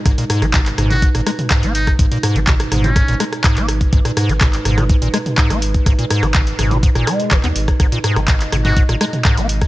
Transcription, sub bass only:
\new Staff \with { instrumentName = "Sub bass" } { \clef bass \time 4/4 \key gis \minor \tempo 4 = 124 gis,,16 r8 gis,,8. gis,,8. gis,,16 r8. gis,,8. | gis,,16 r8 gis,,8. gis,,8. gis,,16 r8. gis,,8. | gis,,16 r8 gis,,8. gis,,8. gis,,16 r8. gis,,8. | gis,,16 r8 gis,,8. gis,,8. gis,,16 r8 fis,,16 dis,16 gis,,16 r16 |
gis,,16 r8 gis,,8. gis,,8. gis,,16 r8. gis,,8. | }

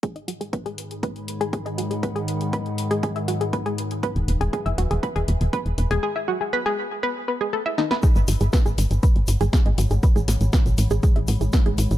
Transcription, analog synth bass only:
\new Staff \with { instrumentName = "Analog synth bass" } { \clef bass \time 4/4 \key gis \phrygian \tempo 4 = 120 r1 | r1 | r16 e,,16 e,,16 e,,16 r16 fis,,16 e,,16 e,,16 r16 e,,16 e,,16 e,,16 r16 e,,16 e,,16 e,,16 | r1 |
r16 gis,,16 gis,,16 gis,,16 r16 a,,16 gis,,16 gis,,16 r16 gis,,16 gis,,16 gis,,16 r16 gis,,16 gis,,16 gis,,16 | r16 a,,16 a,,16 a,,16 r16 b,,16 a,,16 a,,16 r16 a,,16 a,,16 a,,16 r16 a,,16 a,,16 a,,16 | }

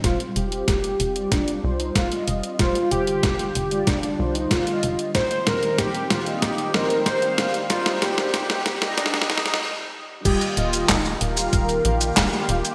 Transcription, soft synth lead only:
\new Staff \with { instrumentName = "Soft synth lead" } { \time 4/4 \key f \dorian \tempo 4 = 94 f'8 g'4. d'8. ees'16 f'8. r16 | f'8 g'4. d'8. ees'16 f'8. r16 | c''8 bes'8 g'8 f'8 g'8 bes'8 c''8. r16 | f'8 g'4. d'8 ees'8 r4 |
g'8 f'8 ees'8 bes'2 r8 | }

